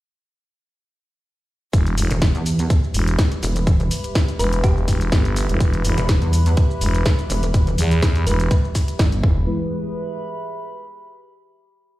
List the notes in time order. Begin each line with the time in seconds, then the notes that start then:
1.73 E1 G3 E4 G4 B4, kick, closed hi-hat, shaker
1.87 closed hi-hat, shaker
1.98 E1, open hi-hat, shaker
2.04 B4
2.11 E1, closed hi-hat, shaker
2.22 E5, kick, snare, closed hi-hat, shaker
2.35 E2, closed hi-hat, shaker
2.46 open hi-hat, shaker
2.59 closed hi-hat, shaker
2.69 B5, kick, closed hi-hat, shaker
2.84 shaker
2.94 E1, open hi-hat, shaker
3.08 closed hi-hat, shaker
3.19 kick, snare, closed hi-hat, shaker
3.32 closed hi-hat, shaker
3.43 E1, open hi-hat, shaker
3.56 closed hi-hat, shaker
3.67 kick, closed hi-hat, shaker
3.80 closed hi-hat, shaker
3.91 open hi-hat, shaker
4.04 closed hi-hat, shaker
4.15 kick, snare, closed hi-hat, shaker
4.28 closed hi-hat, shaker
4.39 E1 B4, open hi-hat, shaker
4.53 closed hi-hat, shaker
4.64 G4, kick, closed hi-hat, shaker
4.77 shaker
4.88 E1, kick, snare, open hi-hat, shaker
5.01 closed hi-hat, shaker
5.12 G1, kick, snare, closed hi-hat, shaker
5.25 closed hi-hat, shaker
5.36 open hi-hat, shaker
5.49 E1, closed hi-hat, shaker
5.60 E1, kick, closed hi-hat, shaker
5.74 closed hi-hat, shaker
5.85 E1, open hi-hat, shaker
5.98 E1, closed hi-hat, shaker
6.09 kick, snare, closed hi-hat, shaker
6.22 E2, closed hi-hat, shaker
6.33 open hi-hat, shaker
6.46 closed hi-hat, shaker
6.57 kick, closed hi-hat, shaker
6.71 shaker
6.81 E1, open hi-hat, shaker
6.95 closed hi-hat, shaker
7.06 kick, snare, closed hi-hat, shaker
7.19 closed hi-hat, shaker
7.30 E1, open hi-hat, shaker
7.43 closed hi-hat, shaker
7.54 kick, closed hi-hat, shaker
7.67 closed hi-hat, shaker
7.78 E2, open hi-hat, shaker
7.91 closed hi-hat, shaker
8.02 kick, snare, closed hi-hat, shaker
8.16 closed hi-hat, shaker
8.27 E1 B4, open hi-hat, shaker
8.40 closed hi-hat, shaker
8.51 kick, closed hi-hat, shaker
8.64 shaker
8.75 kick, snare, open hi-hat, shaker
8.88 closed hi-hat, shaker
8.99 G1, kick, snare, closed hi-hat, shaker
9.12 closed hi-hat, shaker
9.23 E1 G#3 E4 G#4 B4, kick
9.32 B4
9.63 E5
9.70 B5